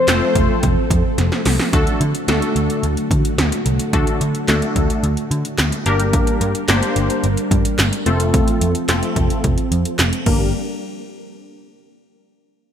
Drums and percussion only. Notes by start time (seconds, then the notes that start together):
0.08 snare, clap, closed hi-hat
0.35 kick, closed hi-hat
0.63 kick, closed hi-hat
0.90 kick, closed hi-hat
1.18 snare, closed hi-hat
1.32 snare
1.45 snare, open hi-hat
1.59 snare
1.73 kick, closed hi-hat
1.87 closed hi-hat
2.01 closed hi-hat
2.15 closed hi-hat
2.28 snare, closed hi-hat
2.42 closed hi-hat
2.56 closed hi-hat
2.70 closed hi-hat
2.83 closed hi-hat
2.97 closed hi-hat
3.11 kick, closed hi-hat
3.25 closed hi-hat
3.38 snare, closed hi-hat
3.52 closed hi-hat
3.66 closed hi-hat
3.79 closed hi-hat
3.93 kick, closed hi-hat
4.07 closed hi-hat
4.21 closed hi-hat
4.35 closed hi-hat
4.48 snare, clap, closed hi-hat
4.62 closed hi-hat
4.76 kick, closed hi-hat
4.90 closed hi-hat
5.04 closed hi-hat
5.17 closed hi-hat
5.31 closed hi-hat
5.45 closed hi-hat
5.58 snare, clap, closed hi-hat
5.72 closed hi-hat
5.86 closed hi-hat
6.00 closed hi-hat
6.13 kick, closed hi-hat
6.27 closed hi-hat
6.41 closed hi-hat
6.55 closed hi-hat
6.68 snare, clap, closed hi-hat
6.83 closed hi-hat
6.96 closed hi-hat
7.10 closed hi-hat
7.24 closed hi-hat
7.37 closed hi-hat
7.51 kick, closed hi-hat
7.65 closed hi-hat
7.79 snare, clap, closed hi-hat
7.93 closed hi-hat
8.06 closed hi-hat
8.20 closed hi-hat
8.34 kick, closed hi-hat
8.48 closed hi-hat
8.61 closed hi-hat
8.75 closed hi-hat
8.89 snare, clap, closed hi-hat
9.03 closed hi-hat
9.16 kick, closed hi-hat
9.30 closed hi-hat
9.44 kick, closed hi-hat
9.58 closed hi-hat
9.72 closed hi-hat
9.85 closed hi-hat
9.99 snare, clap, closed hi-hat
10.13 closed hi-hat
10.26 kick, crash